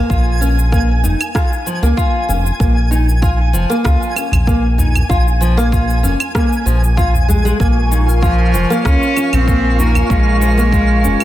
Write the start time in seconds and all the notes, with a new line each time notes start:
Already playing: G#5
0.10 A#1 F4, kick, shaker
0.41 C#4, shaker
0.59 shaker
0.72 A#3, kick, shaker
1.04 F1 D#4, udu, shaker
1.21 claves, shaker
1.35 F4, kick, cross-stick, shaker
1.53 shaker
1.66 F3, shaker
1.83 C#2 A#3, shaker
1.97 F4, kick, shaker
2.29 F1 C#4, udu, shaker
2.46 shaker
2.60 A#1 A#3, kick, shaker
2.91 D#4, shaker
3.09 shaker
3.22 F4, kick, shaker
3.53 F1 F3, shaker
3.70 A#3, shaker
3.84 C#2 F4, kick, cross-stick, shaker
4.03 shaker
4.16 C#4, claves, shaker
4.32 A#1, udu, claves, shaker
4.47 A#3, kick, shaker
4.78 D#4, udu, shaker
4.95 udu, claves, shaker
5.09 A#1 F4, kick, shaker
5.28 shaker
5.41 F3, shaker
5.57 A#3, shaker
5.72 F4, kick, shaker
5.90 shaker
6.03 F1 C#4, udu, shaker
6.20 claves, shaker
6.35 A#3, kick, cross-stick, shaker
6.53 shaker
6.66 A#1 F3, shaker
6.84 shaker
6.97 F4, kick, shaker
7.14 udu, shaker
7.28 G#3, udu, shaker
7.45 G#3, shaker
7.59 A#1 A#3 F4 A#4 F5 G#5 C#6, kick, shaker
7.91 D#4, shaker
8.09 shaker
8.22 F3 F4, kick, shaker
8.54 F1 F3, shaker
8.70 A#3, shaker
8.85 C#2 C#4 F4, kick, cross-stick, shaker
9.03 shaker
9.16 C#4, claves, shaker
9.33 A#1 C4, udu, claves, shaker
9.48 A#3, kick, shaker
9.79 A#3 D#4, udu, shaker
9.95 udu, claves, shaker
10.10 A#1 G#3 F4, kick, shaker
10.41 F3, shaker
10.57 A#3, shaker
10.72 F4, kick, shaker
11.04 F1 C#4, udu, shaker
11.20 claves